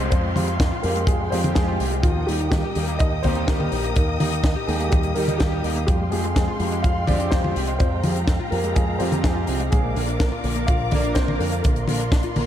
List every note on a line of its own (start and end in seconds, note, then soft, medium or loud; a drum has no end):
0.00 0.11 G#3 loud
0.00 2.00 G#3 medium
0.00 2.00 F5 medium
0.00 5.84 G5 medium
0.00 2.00 C6 medium
0.00 downlifter medium
0.10 0.33 F2 loud
0.10 0.18 F3 loud
0.10 0.57 C4 medium
0.10 0.56 C5 medium
0.10 kick loud
0.10 closed hi-hat medium
0.24 0.35 G#3 medium
0.36 0.57 F2 medium
0.36 0.47 F3 loud
0.36 0.50 G#3 medium
0.36 0.50 C4 medium
0.36 0.50 F4 medium
0.36 0.50 G4 medium
0.36 open hi-hat loud
0.36 high tom medium
0.48 0.54 C4 medium
0.48 closed hi-hat medium
0.60 0.70 F2 medium
0.60 0.66 F3 medium
0.60 kick loud
0.60 snare loud
0.60 closed hi-hat medium
0.72 0.83 F4 loud
0.83 1.05 F2 loud
0.83 0.95 F3 medium
0.83 1.06 G#3 medium
0.83 1.07 A#3 medium
0.83 1.06 C4 medium
0.83 1.06 F4 medium
0.83 1.06 G4 loud
0.83 1.08 A#4 medium
0.83 open hi-hat loud
0.96 1.07 G#3 loud
0.96 closed hi-hat medium
1.06 1.29 F2 loud
1.06 1.14 F3 loud
1.06 1.31 G#3 medium
1.06 1.29 G#4 loud
1.06 kick loud
1.06 closed hi-hat loud
1.20 1.31 G#3 medium
1.30 1.53 F2 loud
1.30 1.43 F3 loud
1.30 1.77 G#3 loud
1.30 1.77 C4 loud
1.30 1.55 C4 medium
1.30 1.77 F4 medium
1.30 1.77 G4 loud
1.30 1.56 C5 medium
1.30 open hi-hat loud
1.44 1.50 C4 medium
1.44 closed hi-hat medium
1.44 high tom medium
1.55 1.77 F2 medium
1.55 1.62 F3 medium
1.55 1.90 G#3 medium
1.55 1.89 G#4 loud
1.55 kick loud
1.55 snare loud
1.55 closed hi-hat medium
1.68 1.79 F4 loud
1.80 2.01 C2 medium
1.80 1.91 F3 medium
1.80 1.94 G#3 loud
1.80 1.94 C4 medium
1.80 1.94 F4 medium
1.80 1.94 G4 loud
1.80 open hi-hat loud
1.92 2.03 G#3 loud
1.92 closed hi-hat medium
2.03 2.25 D#2 loud
2.03 2.10 D#3 loud
2.03 2.27 F3 medium
2.03 2.26 F4 loud
2.03 5.84 A#4 medium
2.03 5.84 D#5 medium
2.03 5.84 D#6 medium
2.03 kick loud
2.03 closed hi-hat medium
2.16 2.27 A#3 medium
2.27 2.49 D#2 medium
2.27 2.39 D#3 loud
2.27 2.42 G3 medium
2.27 2.34 G3 medium
2.27 2.42 A#3 medium
2.27 2.42 D#4 medium
2.27 2.32 G4 medium
2.27 2.42 G4 medium
2.27 open hi-hat loud
2.39 2.47 D#4 medium
2.39 closed hi-hat medium
2.51 2.62 D#2 medium
2.51 2.58 D#3 medium
2.51 2.97 G3 medium
2.51 2.96 G4 loud
2.51 kick loud
2.51 snare loud
2.51 closed hi-hat medium
2.64 2.75 G4 loud
2.75 2.97 D#2 loud
2.75 2.87 D#3 medium
2.75 2.98 G3 medium
2.75 2.98 A#3 medium
2.75 2.98 D#4 medium
2.75 2.98 G4 loud
2.75 open hi-hat loud
2.88 2.99 A#3 loud
2.88 closed hi-hat medium
2.99 3.21 D#2 loud
2.99 3.07 D#3 loud
2.99 3.06 D#4 medium
2.99 3.04 D#5 loud
2.99 kick loud
2.99 closed hi-hat medium
3.12 3.23 A#3 medium
3.23 3.45 D#2 loud
3.23 3.35 D#3 loud
3.23 3.69 G3 loud
3.23 3.69 A#3 medium
3.23 3.47 C4 medium
3.23 3.69 D#4 loud
3.23 3.69 G4 loud
3.23 3.48 C5 loud
3.23 kick medium
3.23 open hi-hat loud
3.23 high tom medium
3.35 3.42 D#4 medium
3.35 closed hi-hat medium
3.47 3.69 D#2 loud
3.47 3.54 D#3 medium
3.47 3.93 A#3 medium
3.47 3.93 A#4 loud
3.47 kick loud
3.47 snare loud
3.47 closed hi-hat medium
3.60 3.71 G4 loud
3.60 high tom medium
3.72 3.93 A#1 medium
3.72 3.83 D#3 medium
3.72 3.86 G3 medium
3.72 3.86 A#3 medium
3.72 3.86 D#4 medium
3.72 3.86 G4 loud
3.72 open hi-hat loud
3.84 3.95 A#3 loud
3.84 closed hi-hat medium
3.95 4.17 D#2 loud
3.95 4.02 D#3 loud
3.95 4.41 A#3 medium
3.95 4.40 A#4 loud
3.95 kick loud
3.95 closed hi-hat medium
4.08 4.19 A#3 medium
4.20 4.41 D#2 medium
4.20 4.31 D#3 loud
4.20 4.34 G3 medium
4.20 4.34 A#3 medium
4.20 4.34 D#4 medium
4.20 4.34 G4 medium
4.20 open hi-hat loud
4.20 high tom medium
4.32 4.38 D#4 medium
4.32 closed hi-hat medium
4.43 4.54 D#2 medium
4.43 4.50 D#3 medium
4.43 kick loud
4.43 snare loud
4.43 closed hi-hat medium
4.56 4.67 G4 loud
4.67 4.89 D#2 loud
4.67 4.79 D#3 medium
4.67 4.90 G3 medium
4.67 4.91 G#3 medium
4.67 4.90 A#3 medium
4.67 4.90 D#4 medium
4.67 4.90 G4 loud
4.67 4.90 G#4 medium
4.67 open hi-hat loud
4.80 4.91 A#3 loud
4.80 closed hi-hat medium
4.90 5.13 D#2 loud
4.90 4.98 D#3 loud
4.90 5.15 G3 medium
4.90 5.16 G4 medium
4.90 kick loud
4.90 closed hi-hat medium
5.03 5.15 A#3 medium
5.03 closed hi-hat medium
5.15 5.37 D#2 medium
5.15 5.27 D#3 loud
5.15 5.61 G3 loud
5.15 5.61 A#3 medium
5.15 5.39 A#3 medium
5.15 5.61 D#4 medium
5.15 5.61 G4 loud
5.15 5.40 A#4 medium
5.15 open hi-hat loud
5.28 5.34 D#4 medium
5.28 closed hi-hat medium
5.28 high tom medium
5.39 5.61 D#2 medium
5.39 5.46 D#3 medium
5.39 5.74 G3 medium
5.39 5.73 G4 medium
5.39 kick loud
5.39 snare loud
5.39 closed hi-hat medium
5.52 5.63 G4 loud
5.64 5.85 D#2 medium
5.64 5.75 D#3 medium
5.64 5.78 G3 loud
5.64 5.78 A#3 medium
5.64 5.78 D#4 medium
5.64 5.78 G4 loud
5.64 open hi-hat loud
5.76 5.87 A#3 loud
5.76 closed hi-hat medium
5.87 6.09 F2 loud
5.87 5.94 F3 loud
5.87 6.11 G3 medium
5.87 9.68 G#3 medium
5.87 6.10 G4 loud
5.87 12.46 F5 medium
5.87 9.68 G5 medium
5.87 7.78 C6 medium
5.87 kick loud
5.87 closed hi-hat medium
6.00 6.11 G#3 medium
6.11 6.33 F2 medium
6.11 6.23 F3 loud
6.11 6.26 G#3 medium
6.11 6.35 G#3 medium
6.11 6.26 C4 medium
6.11 6.26 F4 medium
6.11 6.26 G4 medium
6.11 6.33 G#4 medium
6.11 open hi-hat loud
6.24 6.30 C4 medium
6.24 closed hi-hat medium
6.35 6.47 F2 medium
6.35 6.81 G#3 medium
6.35 6.47 C4 loud
6.35 6.85 G#4 loud
6.35 kick loud
6.35 snare loud
6.35 closed hi-hat medium
6.48 6.59 F4 loud
6.60 6.81 F2 loud
6.60 6.71 F3 medium
6.60 6.82 G#3 medium
6.60 6.82 C4 medium
6.60 6.82 F4 medium
6.60 6.82 G4 loud
6.60 open hi-hat loud
6.72 6.83 G#3 loud
6.72 closed hi-hat medium
6.83 7.05 F2 loud
6.83 6.90 F3 loud
6.83 7.07 F4 medium
6.83 7.08 F5 loud
6.83 kick loud
6.83 closed hi-hat medium
6.96 7.07 G#3 medium
7.07 7.29 F2 loud
7.07 7.19 F3 loud
7.07 7.53 G#3 loud
7.07 7.53 C4 loud
7.07 7.31 D4 medium
7.07 7.53 F4 loud
7.07 7.53 G4 loud
7.07 7.30 D5 loud
7.07 kick medium
7.07 open hi-hat loud
7.07 high tom medium
7.20 7.26 C4 medium
7.20 closed hi-hat medium
7.31 7.53 F2 medium
7.31 7.43 C4 loud
7.31 7.77 C4 medium
7.31 7.76 C5 loud
7.31 kick loud
7.31 snare loud
7.31 closed hi-hat medium
7.44 7.55 F4 loud
7.44 high tom medium
7.56 7.77 C2 medium
7.56 7.67 F3 medium
7.56 7.70 G#3 medium
7.56 7.70 C4 medium
7.56 7.70 F4 medium
7.56 7.70 G4 loud
7.56 open hi-hat loud
7.67 7.79 G#3 loud
7.67 closed hi-hat medium
7.79 8.01 F2 loud
7.79 7.86 F3 loud
7.79 8.25 C4 medium
7.79 8.24 C5 medium
7.79 9.70 A#5 medium
7.79 kick loud
7.79 closed hi-hat medium
7.92 8.03 G#3 medium
8.03 8.25 F2 medium
8.03 8.15 F3 loud
8.03 8.18 G#3 medium
8.03 8.18 C4 medium
8.03 8.18 F4 medium
8.03 8.18 G4 medium
8.03 open hi-hat loud
8.03 high tom medium
8.16 8.22 C4 medium
8.16 closed hi-hat medium
8.27 8.38 F2 medium
8.27 8.39 C4 loud
8.27 kick loud
8.27 snare loud
8.27 closed hi-hat medium
8.40 8.51 F4 loud
8.51 8.73 F2 loud
8.51 8.63 F3 medium
8.51 8.74 G#3 medium
8.51 8.75 A#3 medium
8.51 8.74 C4 medium
8.51 8.74 F4 medium
8.51 8.74 G4 loud
8.51 8.76 A#4 medium
8.51 open hi-hat loud
8.64 8.75 G#3 loud
8.64 closed hi-hat medium
8.75 8.97 F2 loud
8.75 8.82 F3 loud
8.75 8.99 G#3 medium
8.75 9.00 G#4 medium
8.75 kick loud
8.75 closed hi-hat medium
8.88 8.99 G#3 medium
8.99 9.21 F2 loud
8.99 9.11 F3 loud
8.99 9.45 G#3 loud
8.99 9.45 C4 medium
8.99 9.06 C4 medium
8.99 9.45 F4 medium
8.99 9.45 G4 loud
8.99 9.04 C5 medium
8.99 open hi-hat loud
9.12 9.18 C4 medium
9.12 closed hi-hat medium
9.12 high tom medium
9.23 9.45 F2 loud
9.23 9.58 G#3 medium
9.23 9.35 C4 loud
9.23 9.57 G#4 medium
9.23 kick loud
9.23 snare loud
9.23 closed hi-hat medium
9.36 9.47 F4 loud
9.47 9.69 C2 medium
9.47 9.59 F3 medium
9.47 9.62 G#3 medium
9.47 9.62 C4 medium
9.47 9.62 F4 medium
9.47 9.62 G4 loud
9.47 open hi-hat loud
9.60 9.71 G#3 loud
9.60 closed hi-hat medium
9.71 9.93 A#1 loud
9.71 9.78 D3 loud
9.71 9.95 G#3 medium
9.71 9.96 G#4 loud
9.71 12.46 A#4 medium
9.71 12.46 D5 medium
9.71 11.62 D6 medium
9.71 kick loud
9.71 closed hi-hat medium
9.84 9.95 A#3 medium
9.95 10.17 A#1 medium
9.95 10.07 D3 loud
9.95 10.10 A#3 medium
9.95 10.19 A#3 medium
9.95 10.10 D4 medium
9.95 10.10 F4 medium
9.95 10.17 A#4 medium
9.95 10.10 A#4 medium
9.95 open hi-hat loud
10.08 10.14 D4 medium
10.08 closed hi-hat medium
10.19 10.31 A#1 medium
10.19 10.65 A#3 medium
10.19 10.31 D4 loud
10.19 10.64 A#4 loud
10.19 kick loud
10.19 snare loud
10.19 closed hi-hat medium
10.32 10.43 F4 loud
10.44 10.65 A#1 loud
10.44 10.55 D3 medium
10.44 10.66 A#3 medium
10.44 10.66 D4 medium
10.44 10.66 F4 medium
10.44 10.66 A#4 loud
10.44 open hi-hat loud
10.56 10.67 A#3 loud
10.56 closed hi-hat medium
10.67 10.89 A#1 loud
10.67 10.74 D3 loud
10.67 10.91 F4 medium
10.67 10.90 F5 loud
10.67 kick loud
10.67 closed hi-hat loud
10.80 10.91 A#3 medium
10.91 11.13 A#1 loud
10.91 11.03 D3 loud
10.91 11.37 A#3 loud
10.91 11.37 D4 medium
10.91 11.15 D4 medium
10.91 11.37 F4 medium
10.91 11.37 A#4 loud
10.91 11.14 D5 loud
10.91 kick medium
10.91 open hi-hat loud
10.91 high tom medium
11.04 11.10 D4 medium
11.04 closed hi-hat medium
11.15 11.37 A#1 medium
11.15 11.39 C4 medium
11.15 11.27 D4 loud
11.15 11.40 C5 loud
11.15 kick loud
11.15 snare loud
11.15 closed hi-hat medium
11.28 11.39 F4 loud
11.28 high tom medium
11.39 11.61 F2 medium
11.39 11.51 D3 medium
11.39 11.54 A#3 medium
11.39 11.46 A#3 medium
11.39 11.54 D4 medium
11.39 11.54 F4 medium
11.39 11.44 A#4 loud
11.39 11.54 A#4 loud
11.39 open hi-hat loud
11.52 11.63 A#3 loud
11.52 closed hi-hat medium
11.63 11.86 A#1 loud
11.63 11.70 D3 loud
11.63 12.46 A#3 medium
11.63 12.46 A#4 medium
11.63 12.46 C6 medium
11.63 kick loud
11.63 closed hi-hat medium
11.76 11.87 A#3 medium
11.76 closed hi-hat medium
11.88 12.09 A#1 medium
11.88 11.99 D3 loud
11.88 12.02 A#3 medium
11.88 12.02 D4 medium
11.88 12.02 F4 medium
11.88 12.02 A#4 medium
11.88 open hi-hat loud
11.88 high tom medium
12.00 12.06 D4 medium
12.00 closed hi-hat medium
12.12 12.22 A#1 medium
12.12 12.23 D4 loud
12.12 kick loud
12.12 snare loud
12.12 closed hi-hat medium
12.23 12.35 F4 loud
12.23 closed hi-hat medium
12.36 12.46 A#1 loud
12.36 12.46 D3 medium
12.36 12.46 A#3 medium
12.36 12.46 D4 medium
12.36 12.46 F4 medium
12.36 12.46 A#4 loud
12.36 open hi-hat loud
12.36 high tom medium